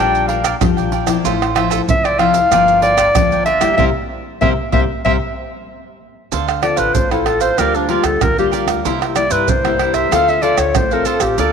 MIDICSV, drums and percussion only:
0, 0, Header, 1, 4, 480
1, 0, Start_track
1, 0, Tempo, 633580
1, 945, Time_signature, 4, 2, 24, 8
1, 8731, End_track
2, 0, Start_track
2, 0, Title_t, "Pandeiro"
2, 112, Note_on_c, 9, 54, 33
2, 188, Note_off_c, 9, 54, 0
2, 218, Note_on_c, 9, 54, 61
2, 293, Note_off_c, 9, 54, 0
2, 337, Note_on_c, 9, 54, 65
2, 412, Note_off_c, 9, 54, 0
2, 463, Note_on_c, 9, 54, 78
2, 539, Note_off_c, 9, 54, 0
2, 591, Note_on_c, 9, 54, 34
2, 666, Note_off_c, 9, 54, 0
2, 697, Note_on_c, 9, 54, 63
2, 773, Note_off_c, 9, 54, 0
2, 810, Note_on_c, 9, 54, 72
2, 886, Note_off_c, 9, 54, 0
2, 947, Note_on_c, 9, 54, 81
2, 1023, Note_off_c, 9, 54, 0
2, 1077, Note_on_c, 9, 54, 33
2, 1153, Note_off_c, 9, 54, 0
2, 1180, Note_on_c, 9, 54, 60
2, 1256, Note_off_c, 9, 54, 0
2, 1297, Note_on_c, 9, 54, 69
2, 1373, Note_off_c, 9, 54, 0
2, 1429, Note_on_c, 9, 54, 81
2, 1505, Note_off_c, 9, 54, 0
2, 1553, Note_on_c, 9, 54, 34
2, 1629, Note_off_c, 9, 54, 0
2, 1662, Note_on_c, 9, 54, 59
2, 1737, Note_off_c, 9, 54, 0
2, 1773, Note_on_c, 9, 54, 65
2, 1849, Note_off_c, 9, 54, 0
2, 1906, Note_on_c, 9, 54, 75
2, 1982, Note_off_c, 9, 54, 0
2, 2031, Note_on_c, 9, 54, 31
2, 2107, Note_off_c, 9, 54, 0
2, 2139, Note_on_c, 9, 54, 62
2, 2214, Note_off_c, 9, 54, 0
2, 2255, Note_on_c, 9, 54, 65
2, 2331, Note_off_c, 9, 54, 0
2, 2387, Note_on_c, 9, 54, 83
2, 2463, Note_off_c, 9, 54, 0
2, 2515, Note_on_c, 9, 54, 35
2, 2591, Note_off_c, 9, 54, 0
2, 2619, Note_on_c, 9, 54, 60
2, 2695, Note_off_c, 9, 54, 0
2, 2736, Note_on_c, 9, 54, 69
2, 2811, Note_off_c, 9, 54, 0
2, 4788, Note_on_c, 9, 54, 79
2, 4864, Note_off_c, 9, 54, 0
2, 4913, Note_on_c, 9, 54, 32
2, 4989, Note_off_c, 9, 54, 0
2, 5020, Note_on_c, 9, 54, 57
2, 5096, Note_off_c, 9, 54, 0
2, 5130, Note_on_c, 9, 54, 66
2, 5206, Note_off_c, 9, 54, 0
2, 5263, Note_on_c, 9, 54, 77
2, 5339, Note_off_c, 9, 54, 0
2, 5390, Note_on_c, 9, 54, 32
2, 5465, Note_off_c, 9, 54, 0
2, 5499, Note_on_c, 9, 54, 59
2, 5575, Note_off_c, 9, 54, 0
2, 5611, Note_on_c, 9, 54, 66
2, 5687, Note_off_c, 9, 54, 0
2, 5743, Note_on_c, 9, 54, 78
2, 5819, Note_off_c, 9, 54, 0
2, 5868, Note_on_c, 9, 54, 31
2, 5944, Note_off_c, 9, 54, 0
2, 5975, Note_on_c, 9, 54, 62
2, 6051, Note_off_c, 9, 54, 0
2, 6088, Note_on_c, 9, 54, 66
2, 6164, Note_off_c, 9, 54, 0
2, 6222, Note_on_c, 9, 54, 78
2, 6298, Note_off_c, 9, 54, 0
2, 6353, Note_on_c, 9, 54, 34
2, 6428, Note_off_c, 9, 54, 0
2, 6462, Note_on_c, 9, 54, 57
2, 6538, Note_off_c, 9, 54, 0
2, 6574, Note_on_c, 9, 54, 64
2, 6649, Note_off_c, 9, 54, 0
2, 6707, Note_on_c, 9, 54, 83
2, 6783, Note_off_c, 9, 54, 0
2, 6834, Note_on_c, 9, 54, 32
2, 6910, Note_off_c, 9, 54, 0
2, 6937, Note_on_c, 9, 54, 60
2, 7013, Note_off_c, 9, 54, 0
2, 7050, Note_on_c, 9, 54, 68
2, 7125, Note_off_c, 9, 54, 0
2, 7182, Note_on_c, 9, 54, 79
2, 7258, Note_off_c, 9, 54, 0
2, 7309, Note_on_c, 9, 54, 34
2, 7385, Note_off_c, 9, 54, 0
2, 7420, Note_on_c, 9, 54, 59
2, 7496, Note_off_c, 9, 54, 0
2, 7530, Note_on_c, 9, 54, 67
2, 7605, Note_off_c, 9, 54, 0
2, 7668, Note_on_c, 9, 54, 80
2, 7744, Note_off_c, 9, 54, 0
2, 7791, Note_on_c, 9, 54, 31
2, 7867, Note_off_c, 9, 54, 0
2, 7900, Note_on_c, 9, 54, 58
2, 7975, Note_off_c, 9, 54, 0
2, 8012, Note_on_c, 9, 54, 67
2, 8088, Note_off_c, 9, 54, 0
2, 8142, Note_on_c, 9, 54, 78
2, 8218, Note_off_c, 9, 54, 0
2, 8266, Note_on_c, 9, 54, 34
2, 8342, Note_off_c, 9, 54, 0
2, 8372, Note_on_c, 9, 54, 61
2, 8448, Note_off_c, 9, 54, 0
2, 8486, Note_on_c, 9, 54, 67
2, 8562, Note_off_c, 9, 54, 0
2, 8621, Note_on_c, 9, 54, 75
2, 8697, Note_off_c, 9, 54, 0
2, 8731, End_track
3, 0, Start_track
3, 0, Title_t, "Tamborim"
3, 337, Note_on_c, 9, 60, 82
3, 412, Note_off_c, 9, 60, 0
3, 463, Note_on_c, 9, 60, 77
3, 539, Note_off_c, 9, 60, 0
3, 810, Note_on_c, 9, 60, 81
3, 886, Note_off_c, 9, 60, 0
3, 1077, Note_on_c, 9, 60, 82
3, 1153, Note_off_c, 9, 60, 0
3, 1180, Note_on_c, 9, 60, 93
3, 1256, Note_off_c, 9, 60, 0
3, 1553, Note_on_c, 9, 60, 82
3, 1629, Note_off_c, 9, 60, 0
3, 1662, Note_on_c, 9, 60, 85
3, 1737, Note_off_c, 9, 60, 0
3, 1906, Note_on_c, 9, 60, 80
3, 1982, Note_off_c, 9, 60, 0
3, 2255, Note_on_c, 9, 60, 82
3, 2331, Note_off_c, 9, 60, 0
3, 2387, Note_on_c, 9, 60, 84
3, 2463, Note_off_c, 9, 60, 0
3, 2736, Note_on_c, 9, 60, 82
3, 2811, Note_off_c, 9, 60, 0
3, 4913, Note_on_c, 9, 60, 77
3, 4989, Note_off_c, 9, 60, 0
3, 5020, Note_on_c, 9, 60, 87
3, 5096, Note_off_c, 9, 60, 0
3, 5390, Note_on_c, 9, 60, 75
3, 5465, Note_off_c, 9, 60, 0
3, 5499, Note_on_c, 9, 60, 79
3, 5575, Note_off_c, 9, 60, 0
3, 5743, Note_on_c, 9, 60, 71
3, 5819, Note_off_c, 9, 60, 0
3, 6088, Note_on_c, 9, 60, 82
3, 6164, Note_off_c, 9, 60, 0
3, 6222, Note_on_c, 9, 60, 75
3, 6298, Note_off_c, 9, 60, 0
3, 6574, Note_on_c, 9, 60, 83
3, 6649, Note_off_c, 9, 60, 0
3, 6834, Note_on_c, 9, 60, 76
3, 6910, Note_off_c, 9, 60, 0
3, 6937, Note_on_c, 9, 60, 80
3, 7013, Note_off_c, 9, 60, 0
3, 7309, Note_on_c, 9, 60, 84
3, 7385, Note_off_c, 9, 60, 0
3, 7420, Note_on_c, 9, 60, 77
3, 7496, Note_off_c, 9, 60, 0
3, 7668, Note_on_c, 9, 60, 81
3, 7744, Note_off_c, 9, 60, 0
3, 8012, Note_on_c, 9, 60, 82
3, 8088, Note_off_c, 9, 60, 0
3, 8142, Note_on_c, 9, 60, 84
3, 8218, Note_off_c, 9, 60, 0
3, 8486, Note_on_c, 9, 60, 78
3, 8562, Note_off_c, 9, 60, 0
3, 8731, End_track
4, 0, Start_track
4, 0, Title_t, "Drums"
4, 112, Note_on_c, 9, 82, 32
4, 188, Note_off_c, 9, 82, 0
4, 337, Note_on_c, 9, 82, 81
4, 337, Note_on_c, 9, 87, 37
4, 412, Note_off_c, 9, 82, 0
4, 412, Note_off_c, 9, 87, 0
4, 463, Note_on_c, 9, 82, 83
4, 463, Note_on_c, 9, 87, 105
4, 539, Note_off_c, 9, 82, 0
4, 539, Note_off_c, 9, 87, 0
4, 591, Note_on_c, 9, 82, 35
4, 666, Note_off_c, 9, 82, 0
4, 810, Note_on_c, 9, 82, 85
4, 810, Note_on_c, 9, 87, 34
4, 886, Note_off_c, 9, 82, 0
4, 886, Note_off_c, 9, 87, 0
4, 947, Note_on_c, 9, 82, 82
4, 947, Note_on_c, 9, 87, 62
4, 1023, Note_off_c, 9, 82, 0
4, 1023, Note_off_c, 9, 87, 0
4, 1077, Note_on_c, 9, 82, 35
4, 1153, Note_off_c, 9, 82, 0
4, 1297, Note_on_c, 9, 82, 81
4, 1297, Note_on_c, 9, 87, 32
4, 1373, Note_off_c, 9, 82, 0
4, 1373, Note_off_c, 9, 87, 0
4, 1429, Note_on_c, 9, 82, 82
4, 1429, Note_on_c, 9, 87, 105
4, 1505, Note_off_c, 9, 82, 0
4, 1505, Note_off_c, 9, 87, 0
4, 1553, Note_on_c, 9, 82, 34
4, 1629, Note_off_c, 9, 82, 0
4, 1773, Note_on_c, 9, 82, 77
4, 1773, Note_on_c, 9, 87, 34
4, 1849, Note_off_c, 9, 82, 0
4, 1849, Note_off_c, 9, 87, 0
4, 1906, Note_on_c, 9, 82, 83
4, 1906, Note_on_c, 9, 87, 56
4, 1982, Note_off_c, 9, 82, 0
4, 1982, Note_off_c, 9, 87, 0
4, 2031, Note_on_c, 9, 82, 33
4, 2107, Note_off_c, 9, 82, 0
4, 2255, Note_on_c, 9, 82, 87
4, 2255, Note_on_c, 9, 87, 36
4, 2331, Note_off_c, 9, 82, 0
4, 2331, Note_off_c, 9, 87, 0
4, 2387, Note_on_c, 9, 82, 81
4, 2387, Note_on_c, 9, 87, 100
4, 2463, Note_off_c, 9, 82, 0
4, 2463, Note_off_c, 9, 87, 0
4, 2515, Note_on_c, 9, 82, 35
4, 2591, Note_off_c, 9, 82, 0
4, 2736, Note_on_c, 9, 82, 77
4, 2736, Note_on_c, 9, 87, 34
4, 2811, Note_off_c, 9, 82, 0
4, 2811, Note_off_c, 9, 87, 0
4, 2867, Note_on_c, 9, 87, 105
4, 2943, Note_off_c, 9, 87, 0
4, 3348, Note_on_c, 9, 87, 98
4, 3424, Note_off_c, 9, 87, 0
4, 3583, Note_on_c, 9, 87, 104
4, 3658, Note_off_c, 9, 87, 0
4, 3831, Note_on_c, 9, 87, 90
4, 3906, Note_off_c, 9, 87, 0
4, 4788, Note_on_c, 9, 82, 73
4, 4788, Note_on_c, 9, 87, 58
4, 4864, Note_off_c, 9, 82, 0
4, 4864, Note_off_c, 9, 87, 0
4, 4913, Note_on_c, 9, 82, 35
4, 4989, Note_off_c, 9, 82, 0
4, 5130, Note_on_c, 9, 82, 80
4, 5130, Note_on_c, 9, 87, 34
4, 5206, Note_off_c, 9, 82, 0
4, 5206, Note_off_c, 9, 87, 0
4, 5263, Note_on_c, 9, 82, 77
4, 5263, Note_on_c, 9, 87, 98
4, 5339, Note_off_c, 9, 82, 0
4, 5339, Note_off_c, 9, 87, 0
4, 5390, Note_on_c, 9, 82, 33
4, 5465, Note_off_c, 9, 82, 0
4, 5611, Note_on_c, 9, 82, 78
4, 5611, Note_on_c, 9, 87, 32
4, 5687, Note_off_c, 9, 82, 0
4, 5687, Note_off_c, 9, 87, 0
4, 5743, Note_on_c, 9, 82, 76
4, 5743, Note_on_c, 9, 87, 52
4, 5819, Note_off_c, 9, 82, 0
4, 5819, Note_off_c, 9, 87, 0
4, 5868, Note_on_c, 9, 82, 30
4, 5944, Note_off_c, 9, 82, 0
4, 6088, Note_on_c, 9, 82, 77
4, 6088, Note_on_c, 9, 87, 32
4, 6164, Note_off_c, 9, 82, 0
4, 6164, Note_off_c, 9, 87, 0
4, 6222, Note_on_c, 9, 82, 81
4, 6222, Note_on_c, 9, 87, 99
4, 6298, Note_off_c, 9, 82, 0
4, 6298, Note_off_c, 9, 87, 0
4, 6353, Note_on_c, 9, 82, 35
4, 6428, Note_off_c, 9, 82, 0
4, 6462, Note_on_c, 9, 82, 68
4, 6538, Note_off_c, 9, 82, 0
4, 6574, Note_on_c, 9, 82, 76
4, 6574, Note_on_c, 9, 87, 34
4, 6649, Note_off_c, 9, 82, 0
4, 6649, Note_off_c, 9, 87, 0
4, 6707, Note_on_c, 9, 82, 80
4, 6707, Note_on_c, 9, 87, 57
4, 6783, Note_off_c, 9, 82, 0
4, 6783, Note_off_c, 9, 87, 0
4, 6834, Note_on_c, 9, 82, 33
4, 6910, Note_off_c, 9, 82, 0
4, 6937, Note_on_c, 9, 82, 77
4, 7013, Note_off_c, 9, 82, 0
4, 7050, Note_on_c, 9, 82, 81
4, 7050, Note_on_c, 9, 87, 34
4, 7125, Note_off_c, 9, 82, 0
4, 7125, Note_off_c, 9, 87, 0
4, 7182, Note_on_c, 9, 82, 80
4, 7182, Note_on_c, 9, 87, 101
4, 7258, Note_off_c, 9, 82, 0
4, 7258, Note_off_c, 9, 87, 0
4, 7309, Note_on_c, 9, 82, 34
4, 7385, Note_off_c, 9, 82, 0
4, 7530, Note_on_c, 9, 82, 73
4, 7530, Note_on_c, 9, 87, 33
4, 7605, Note_off_c, 9, 82, 0
4, 7605, Note_off_c, 9, 87, 0
4, 7668, Note_on_c, 9, 82, 78
4, 7668, Note_on_c, 9, 87, 52
4, 7744, Note_off_c, 9, 82, 0
4, 7744, Note_off_c, 9, 87, 0
4, 7791, Note_on_c, 9, 82, 34
4, 7867, Note_off_c, 9, 82, 0
4, 8012, Note_on_c, 9, 82, 79
4, 8012, Note_on_c, 9, 87, 36
4, 8088, Note_off_c, 9, 82, 0
4, 8088, Note_off_c, 9, 87, 0
4, 8142, Note_on_c, 9, 82, 77
4, 8142, Note_on_c, 9, 87, 102
4, 8218, Note_off_c, 9, 82, 0
4, 8218, Note_off_c, 9, 87, 0
4, 8266, Note_on_c, 9, 82, 33
4, 8342, Note_off_c, 9, 82, 0
4, 8372, Note_on_c, 9, 82, 76
4, 8448, Note_off_c, 9, 82, 0
4, 8486, Note_on_c, 9, 82, 82
4, 8486, Note_on_c, 9, 87, 35
4, 8562, Note_off_c, 9, 82, 0
4, 8562, Note_off_c, 9, 87, 0
4, 8621, Note_on_c, 9, 82, 80
4, 8621, Note_on_c, 9, 87, 59
4, 8697, Note_off_c, 9, 82, 0
4, 8697, Note_off_c, 9, 87, 0
4, 8731, End_track
0, 0, End_of_file